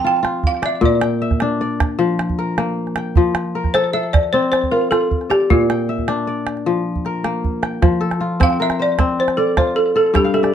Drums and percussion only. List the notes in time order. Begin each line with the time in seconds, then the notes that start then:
0.25 calabash click
0.43 calabash thump
0.54 calabash click
0.63 calabash click
0.83 calabash thump
1.01 calabash click
1.31 calabash thump, calabash click
1.40 calabash click
1.80 calabash thump, calabash click
2.19 calabash click
2.30 calabash thump
2.58 calabash click
2.87 calabash click
2.96 calabash click
3.16 calabash thump
3.35 calabash click
3.64 calabash thump, calabash click
3.75 calabash click
4.14 calabash thump, calabash click
4.53 calabash click
4.63 calabash thump
4.92 calabash click
5.11 calabash thump
5.21 calabash click
5.31 calabash click
5.51 calabash thump
5.70 calabash click
5.98 calabash thump
6.08 calabash click
6.18 calabash click
6.47 calabash click
6.57 calabash click
6.96 calabash thump
7.05 calabash click
7.25 calabash click
7.44 calabash thump
7.63 calabash click
7.83 calabash thump, calabash click
8.02 calabash click
8.11 calabash click
8.21 calabash click
8.41 calabash thump, calabash click
8.50 calabash click
8.70 calabash click
8.99 calabash thump, calabash click
9.19 calabash click
9.28 calabash click
9.57 calabash thump, calabash click
10.15 calabash thump, calabash click
10.34 calabash click
10.44 calabash click